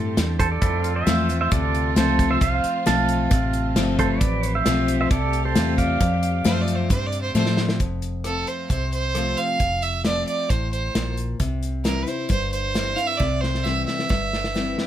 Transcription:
Already playing: fingered electric bass G2, steel-string acoustic guitar A2, string section E3 G3 C4 G4, pedal steel guitar A4 C5
0.17 fingered electric bass E2, steel-string acoustic guitar G2, snare, closed hi-hat
0.39 pedal steel guitar A4 C5, kick, closed hi-hat
0.52 pedal steel guitar A4 D5
0.62 fingered electric bass F2, steel-string acoustic guitar F2, string section A3 C4 F4, pedal steel guitar C4 E4 A4, kick, closed hi-hat
0.82 pedal steel guitar F4, closed hi-hat
0.96 pedal steel guitar C5 E5
1.07 fingered electric bass E2, steel-string acoustic guitar F3 A3 C4 F4, snare, closed hi-hat
1.29 steel-string acoustic guitar C4 F4, closed hi-hat
1.41 pedal steel guitar C5 E5
1.51 fingered electric bass D2, steel-string acoustic guitar C3, pedal steel guitar A4 D5, kick, closed hi-hat
1.75 closed hi-hat
1.96 fingered electric bass C#2, steel-string acoustic guitar F3 A3 C4 F4, pedal steel guitar A4 C5, snare, closed hi-hat
2.19 kick, closed hi-hat
2.30 pedal steel guitar C5 E5
2.41 fingered electric bass C2, steel-string acoustic guitar F2, pedal steel guitar C5 F5, kick, closed hi-hat
2.64 muted fingered electric bass stroke, closed hi-hat
2.86 fingered electric bass B1, steel-string acoustic guitar F3 A3 C4 F4, pedal steel guitar F5 A5, snare, closed hi-hat
3.09 closed hi-hat
3.31 fingered electric bass A1, steel-string acoustic guitar C3, kick, closed hi-hat
3.53 closed hi-hat
3.76 fingered electric bass G1, steel-string acoustic guitar F3 A3 C4 F4, snare, closed hi-hat
3.99 pedal steel guitar A4 C5, kick, closed hi-hat
4.10 pedal steel guitar B4 D5
4.21 fingered electric bass A1, steel-string acoustic guitar F2, string section G4, kick, closed hi-hat
4.43 closed hi-hat
4.55 pedal steel guitar C5 E5
4.66 fingered electric bass B1, steel-string acoustic guitar F3 A3 C4 F4, snare, closed hi-hat
4.88 closed hi-hat
5.01 pedal steel guitar C5 E5
5.11 fingered electric bass C2, steel-string acoustic guitar C3, pedal steel guitar A4 D5, kick, closed hi-hat
5.33 closed hi-hat
5.45 pedal steel guitar A4 C5
5.55 fingered electric bass E2, steel-string acoustic guitar A3 C4 F4, snare, closed hi-hat
5.78 pedal steel guitar D5 F5, kick, closed hi-hat
6.00 fingered electric bass F2, steel-string acoustic guitar F2, kick, closed hi-hat
6.23 closed hi-hat
6.44 fingered electric bass F#2, steel-string acoustic guitar F3 A3 C4 F4, fiddle C5, snare, closed hi-hat
6.61 fiddle D5
6.68 closed hi-hat
6.76 fiddle C5
6.90 fingered electric bass G2, steel-string acoustic guitar C3, fiddle C5, kick, closed hi-hat
7.07 fiddle D5
7.12 closed hi-hat
7.21 fiddle C5
7.35 fingered electric bass A2, steel-string acoustic guitar F3 A3 C4 F4, fiddle C5, snare
7.46 snare
7.57 snare
7.69 snare
7.80 fingered electric bass F1, steel-string acoustic guitar F2, kick, closed hi-hat
8.02 closed hi-hat
8.24 steel-string acoustic guitar F3 A3 C4 F4, fiddle A4, cross-stick, closed hi-hat
8.47 fiddle C5, closed hi-hat
8.70 fingered electric bass C2, steel-string acoustic guitar C3, fiddle C5, kick, closed hi-hat
8.92 fiddle C5, closed hi-hat
9.15 steel-string acoustic guitar F3 A3 C4 F4, cross-stick, closed hi-hat
9.37 fiddle F5, closed hi-hat
9.60 fingered electric bass F1, steel-string acoustic guitar F2, kick, closed hi-hat
9.82 fiddle E5, closed hi-hat
10.05 steel-string acoustic guitar F3 A3 C4 F4, fiddle D5, snare, closed hi-hat
10.27 fiddle D5, closed hi-hat
10.49 fingered electric bass A1, steel-string acoustic guitar A2, fiddle C5, kick, closed hi-hat
10.73 fiddle C5, closed hi-hat
10.95 fingered electric bass A#1, steel-string acoustic guitar A#2, snare, closed hi-hat
11.17 closed hi-hat
11.40 fingered electric bass C2, steel-string acoustic guitar C3, kick, closed hi-hat
11.63 closed hi-hat
11.84 steel-string acoustic guitar E3 G3 C4 E4, fiddle A#4, snare, closed hi-hat
12.03 fiddle B4
12.07 steel-string acoustic guitar C4 E4, fiddle C5, closed hi-hat
12.29 fingered electric bass G1, steel-string acoustic guitar G2, fiddle C5, kick, closed hi-hat
12.53 fiddle C5, closed hi-hat
12.74 steel-string acoustic guitar E3 G3 C4 E4, snare, closed hi-hat
12.96 steel-string acoustic guitar C4 E4, fiddle F5, closed hi-hat
13.07 fiddle E5
13.17 fingered electric bass C2, steel-string acoustic guitar C3, fiddle D5, kick, snare
13.41 fiddle C5, snare
13.54 snare
13.64 steel-string acoustic guitar E3 G3 C4 E4, fiddle E5, snare
13.86 fiddle E5, snare
13.99 snare
14.09 fingered electric bass G1, steel-string acoustic guitar G2, kick, snare
14.33 snare
14.44 snare
14.54 steel-string acoustic guitar E3 G3 C4 E4, snare
14.78 snare

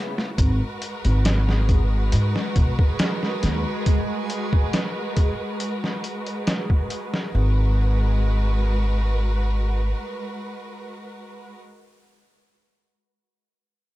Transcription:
Already playing: string section C#3 B3 E4
0.18 snare
0.38 upright bass G#1, synth texture G#3 G#4, string section G#3 F#4 A#4 B4, kick, closed hi-hat
0.82 closed hi-hat
1.05 upright bass G#1, closed hi-hat
1.25 snare, closed hi-hat
1.49 snare
1.69 kick, closed hi-hat
2.12 upright bass G#2, closed hi-hat
2.36 snare
2.56 upright bass B1, kick, closed hi-hat
2.79 kick
2.99 snare, closed hi-hat
3.23 snare
3.43 upright bass D#2, snare, closed hi-hat
3.86 kick, closed hi-hat
4.30 closed hi-hat
4.53 kick
4.73 snare, closed hi-hat
5.17 kick, closed hi-hat
5.60 closed hi-hat
5.84 snare
6.04 closed hi-hat
6.27 closed hi-hat
6.47 snare, closed hi-hat
6.70 kick
6.90 closed hi-hat
7.14 snare
7.35 upright bass G#1, string section G#3 F#4 A#4 B4

